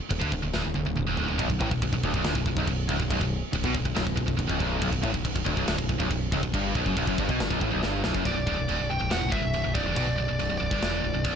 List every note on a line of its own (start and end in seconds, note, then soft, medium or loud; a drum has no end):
0.10 0.21 D1 medium
0.10 0.21 D2 medium
0.10 kick medium
0.10 crash medium
0.19 0.32 D2 medium
0.19 0.31 D3 loud
0.19 kick medium
0.32 0.42 D1 medium
0.32 0.41 D2 medium
0.32 kick medium
0.43 0.53 D1 medium
0.43 0.53 D2 medium
0.54 0.64 D1 loud
0.54 0.63 D2 loud
0.54 snare medium
0.64 0.75 D1 medium
0.64 0.74 D2 medium
0.74 0.85 D1 medium
0.74 0.85 D2 medium
0.74 high tom medium
0.85 0.96 D1 medium
0.85 0.95 D2 medium
0.85 high tom medium
0.96 1.07 D1 medium
0.96 1.06 D2 medium
0.96 mid tom medium
1.07 1.18 E1 medium
1.07 1.17 E2 loud
1.17 1.38 D1 medium
1.17 1.37 D2 medium
1.17 floor tom loud
1.28 floor tom medium
1.38 1.49 B0 medium
1.38 1.48 B1 loud
1.38 kick loud
1.38 crash medium
1.49 1.60 B0 medium
1.49 1.60 B1 medium
1.49 kick medium
1.60 1.71 A1 loud
1.60 1.71 A2 medium
1.60 kick medium
1.71 1.82 B0 medium
1.71 1.81 B1 medium
1.71 kick medium
1.82 1.92 B0 medium
1.82 1.92 B1 medium
1.82 kick loud
1.82 crash medium
1.93 2.03 B0 medium
1.93 2.03 B1 medium
1.93 kick medium
2.03 2.14 D1 medium
2.03 2.14 D2 loud
2.03 kick medium
2.14 2.24 B0 loud
2.14 2.25 B1 medium
2.14 kick medium
2.24 2.35 D1 medium
2.24 2.36 D2 loud
2.24 snare loud
2.24 crash medium
2.35 2.46 B0 medium
2.35 2.46 B1 medium
2.35 kick medium
2.46 2.56 B0 medium
2.46 2.57 B1 medium
2.46 kick medium
2.57 2.67 B0 loud
2.57 2.68 B1 loud
2.57 kick medium
2.67 2.88 B0 medium
2.67 2.86 B1 medium
2.67 kick medium
2.67 crash medium
2.89 2.99 C#1 medium
2.89 3.00 C#2 loud
2.89 kick loud
3.00 3.10 B0 medium
3.00 3.10 B1 medium
3.00 kick medium
3.10 3.21 B0 medium
3.10 3.21 B1 loud
3.10 kick loud
3.10 crash medium
3.21 3.42 B0 medium
3.21 3.39 B1 medium
3.21 kick medium
3.53 3.64 B0 medium
3.53 3.65 B1 medium
3.53 kick loud
3.53 crash medium
3.64 3.74 B1 medium
3.64 3.75 B2 loud
3.64 kick loud
3.75 3.85 B0 medium
3.75 3.84 B1 medium
3.75 kick medium
3.85 3.96 B0 medium
3.85 3.94 B1 medium
3.85 kick medium
3.95 4.06 B0 loud
3.95 4.04 B1 loud
3.95 snare loud
3.95 crash medium
4.05 4.17 B0 medium
4.05 4.15 B1 medium
4.05 kick medium
4.16 4.28 B0 medium
4.16 4.26 B1 medium
4.16 kick medium
4.27 4.38 B0 medium
4.27 4.36 B1 medium
4.27 kick medium
4.37 4.49 B0 medium
4.37 4.48 B1 medium
4.37 kick medium
4.37 crash medium
4.48 4.60 C#1 medium
4.48 4.59 C#2 loud
4.48 kick loud
4.59 4.81 B0 loud
4.59 4.78 B1 loud
4.59 kick medium
4.79 4.92 B0 loud
4.79 4.90 B1 loud
4.79 kick loud
4.79 crash medium
4.91 5.03 B0 medium
4.91 5.02 B1 medium
4.91 kick loud
5.02 5.14 A1 loud
5.02 5.13 A2 loud
5.02 kick medium
5.14 5.24 B0 medium
5.14 5.23 B1 medium
5.14 kick medium
5.24 5.35 B0 medium
5.24 5.34 B1 medium
5.24 kick loud
5.24 crash medium
5.35 5.46 B0 medium
5.35 5.44 B1 medium
5.35 kick medium
5.44 5.57 D1 loud
5.44 5.55 D2 loud
5.44 kick medium
5.56 5.67 B0 loud
5.56 5.67 B1 medium
5.56 kick medium
5.67 5.78 D1 medium
5.67 5.77 D2 medium
5.67 snare loud
5.67 crash medium
5.77 5.89 B0 medium
5.77 5.88 B1 medium
5.77 kick medium
5.89 6.00 B0 medium
5.89 5.98 B1 medium
5.89 kick medium
5.99 6.10 B0 medium
5.99 6.10 B1 loud
5.99 kick medium
6.10 6.31 B0 medium
6.10 6.28 B1 medium
6.10 kick medium
6.10 crash medium
6.32 6.43 C#1 loud
6.32 6.42 C#2 loud
6.32 kick loud
6.43 6.53 B0 medium
6.43 6.53 B1 medium
6.43 kick medium
6.54 6.74 G1 loud
6.54 6.74 G2 loud
6.54 kick loud
6.54 crash medium
6.75 6.85 B0 medium
6.75 6.86 B1 loud
6.75 kick loud
6.86 6.96 F#1 medium
6.86 6.96 F#2 medium
6.86 kick medium
6.97 7.07 B0 loud
6.97 7.07 B1 loud
6.97 kick loud
6.97 crash medium
7.07 7.17 F#1 medium
7.07 7.18 F#2 loud
7.07 kick medium
7.18 7.28 G1 loud
7.18 7.29 G2 loud
7.18 kick medium
7.29 7.39 B1 loud
7.29 7.39 B2 medium
7.29 kick medium
7.40 7.50 G1 loud
7.40 7.50 G2 loud
7.40 snare loud
7.40 crash medium
7.50 7.61 B0 loud
7.50 7.60 B1 loud
7.50 kick loud
7.61 7.71 A1 loud
7.61 7.71 A2 loud
7.61 kick medium
7.71 7.83 B0 loud
7.71 7.81 B1 loud
7.83 8.03 G1 loud
7.83 8.03 G2 loud
7.83 snare medium
8.04 8.14 B0 medium
8.04 8.14 B1 medium
8.04 snare loud
8.15 8.24 F#1 medium
8.15 8.25 F#2 medium
8.15 kick medium
8.25 8.35 B0 loud
8.25 8.36 B1 loud
8.25 8.92 D5 medium
8.25 kick loud
8.25 china medium
8.37 8.47 B0 medium
8.37 8.47 B1 medium
8.47 8.57 C#1 medium
8.47 8.57 C#2 loud
8.47 kick medium
8.58 8.68 B0 medium
8.58 8.68 B1 medium
8.68 8.79 D1 medium
8.68 8.78 D2 loud
8.68 china medium
8.79 8.90 B0 medium
8.79 8.89 B1 medium
8.90 9.01 B0 medium
8.90 8.99 B1 medium
8.90 9.10 G5 medium
9.00 9.11 B0 medium
9.00 9.10 B1 medium
9.10 9.22 E1 loud
9.10 9.20 E2 loud
9.10 9.33 F#5 loud
9.10 snare loud
9.10 china medium
9.20 9.32 B0 medium
9.20 9.30 B1 medium
9.30 9.42 G1 medium
9.30 9.41 G2 loud
9.30 9.74 E5 medium
9.30 kick loud
9.42 9.54 B0 medium
9.42 9.53 B1 medium
9.53 9.65 B0 medium
9.53 9.63 B1 medium
9.53 china medium
9.64 9.75 B0 medium
9.64 9.73 B1 medium
9.75 9.85 B0 medium
9.75 9.85 B1 loud
9.75 10.15 D5 medium
9.75 kick loud
9.86 9.96 E1 loud
9.86 9.96 E2 loud
9.96 10.06 B1 loud
9.96 10.06 B2 loud
9.96 kick loud
9.96 china medium
10.07 10.17 B0 medium
10.07 10.16 B1 medium
10.17 10.28 B0 medium
10.17 10.27 B1 medium
10.17 10.57 D5 medium
10.28 10.39 B0 medium
10.28 10.38 B1 medium
10.39 10.50 B0 medium
10.39 10.48 B1 medium
10.39 china medium
10.49 10.61 B0 medium
10.49 10.58 B1 medium
10.58 10.71 B0 medium
10.58 10.71 B1 medium
10.58 11.35 D5 medium
10.71 10.82 G1 loud
10.71 10.81 G2 medium
10.71 kick loud
10.82 11.02 E1 medium
10.82 11.03 E2 loud
10.82 snare medium
10.82 china medium
11.04 11.13 B0 medium
11.04 11.13 B1 medium
11.14 11.24 B0 medium
11.14 11.23 B1 medium
11.24 11.35 B0 loud
11.24 11.34 B1 loud
11.24 kick loud
11.24 china medium